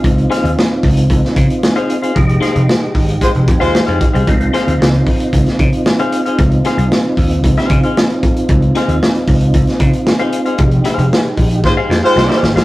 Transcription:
<<
  \new Staff \with { instrumentName = "Clean electric guitar" } { \time 4/4 \key des \lydian \tempo 4 = 114 r8 <ees' aes' c'' f''>16 r2 r8 <ees' aes' c'' f''>16 r16 <ees' aes' c'' f''>16 | r8 <ees' aes' c'' f''>16 r2 <ees' aes' c'' f''>16 r16 <ees' aes' c'' f''>16 r16 <ees' aes' c'' f''>16 | r8 <ees' aes' c'' f''>16 r2 r8 <ees' aes' c'' f''>16 r16 <ees' aes' c'' f''>16 | r8 <ees' aes' c'' f''>16 r4. <ees' aes' c'' f''>8 <ees' aes' c'' f''>16 r4 |
r8 <ees' aes' c'' f''>16 r2 r8 <ees' aes' c'' f''>16 r16 <ees' aes' c'' f''>16 | r8 <ees' aes' c'' f''>8 r4 r16 <ees' aes' c'' f''>16 r16 <ees' aes' c'' f''>16 r16 <ees' aes' c'' f''>8 <ees' aes' c'' f''>16 | }
  \new Staff \with { instrumentName = "Tonewheel organ" } { \time 4/4 \key des \lydian << { <c' f'>1 | <aes g'>1 | <c' f'>1~ | <c' f'>1~ |
<c' f'>1 | <aes g'>1 | } \\ { ees'1 | ees'1 | ees'1~ | ees'1~ |
ees'1~ | ees'1 | } >> }
  \new Staff \with { instrumentName = "Horn section" } { \time 4/4 \key des \lydian r1 | r2 <aes c' f' c''>16 r8 <aes c' f' c''>8. r8 | r1 | r1 |
r1 | r2 <aes c' f' c''>16 r8 <aes c' f' c''>8. r8 | }
  \new Staff \with { instrumentName = "Slap bass" } { \clef bass \time 4/4 \key des \lydian des,8 r16 ees,16 r8 des,8 des,16 r16 des16 r4 r16 | f,,8 r16 f,,16 r8 aes,,8 r16 f,,16 f,16 ees,16 r16 f,16 r16 c,16 | des,8 r16 ees,16 des,8 r8 des,16 r16 des16 r4 r16 | des,8 r16 c,16 r8 ees,8 des,16 r16 des16 r4 r16 |
des,8 r16 ees,16 r8 des,8 des,16 r16 des16 r4 r16 | f,,8 r16 f,,16 r8 bes,,8 aes,,16 r16 f,16 r16 c,16 r16 aes,,16 a,,16 | }
  \new DrumStaff \with { instrumentName = "Drums" } \drummode { \time 4/4 <hh bd>16 hh16 <hh sn>16 hh16 sn8 <hho bd>16 hh16 <hh bd>16 sn16 <hh bd>16 hh16 sn16 hh16 hh16 hh16 | <hh bd>16 hh16 <hh sn>16 hh16 sn8 <hho bd>16 hh16 <hh bd>16 hh16 <hh bd>16 hh16 sn16 hh16 <hh bd>16 hh16 | <hh bd>16 hh16 <hh sn>16 hh16 sn16 hh16 <hho bd>16 hh16 <hh bd>16 <hh sn>16 <hh bd>16 hh16 sn16 hh16 hh16 hh16 | <hh bd>16 hh16 <hh sn>16 hh16 sn8 <hho bd>16 hh16 <hh bd>16 <hh sn>16 <hh bd>16 hh16 sn16 hh16 <hh bd>16 hh16 |
<hh bd>16 hh16 <hh sn>16 hh16 sn16 hh16 <hho bd>16 hh16 <hh bd>16 <hh sn>16 <hh bd>16 hh16 sn16 hh16 hh16 hh16 | <hh bd>16 hh16 <hh sn>16 hh16 sn8 <hho bd>16 hh16 <bd sn>8 sn8 sn16 sn16 sn16 sn16 | }
>>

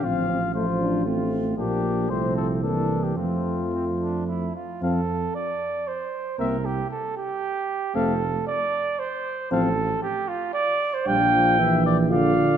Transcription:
<<
  \new Staff \with { instrumentName = "Cornet" } { \time 3/4 \key f \major \tempo 4 = 115 f''4 c''4 r4 | g'4 c''8 a'8 a'8. g'16 | f'2 r4 | f''8 r2 r8 |
e''8 r2 r8 | f''8 r2 r8 | f''8 r2 r8 | f''4 e''8 d''8 d''4 | }
  \new Staff \with { instrumentName = "Flugelhorn" } { \time 3/4 \key f \major f'4 f'4 f'4 | d'4 c'4 d'4 | c'4 c'8 d'8 e'8 f'8 | a'4 d''4 c''4 |
bes'8 g'8 a'8 g'4. | a'4 d''4 c''4 | a'4 g'8 f'8 d''8. c''16 | g''4. r8 f''4 | }
  \new Staff \with { instrumentName = "French horn" } { \time 3/4 \key f \major c'8 c'8 a8 d'8 c'4 | bes4 a4 bes4 | a2~ a8 r8 | c'8 r2 r8 |
c'8 r2 r8 | c'8 r2 r8 | c'8 r2 r8 | d'4 e'4 f'4 | }
  \new Staff \with { instrumentName = "Euphonium" } { \clef bass \time 3/4 \key f \major f4 f4 a4 | f4 f4 e4 | f2~ f8 r8 | f8 r2 r8 |
bes8 r2 r8 | a8 r2 r8 | f8 r2 r8 | g8 f8 e4 d8 d8 | }
  \new Staff \with { instrumentName = "Tuba" } { \clef bass \time 3/4 \key f \major a,,2. | bes,,4 c,2 | f,2~ f,8 r8 | f,4 r2 |
c,4 r2 | f,,4 r2 | a,,4 r2 | bes,,2. | }
>>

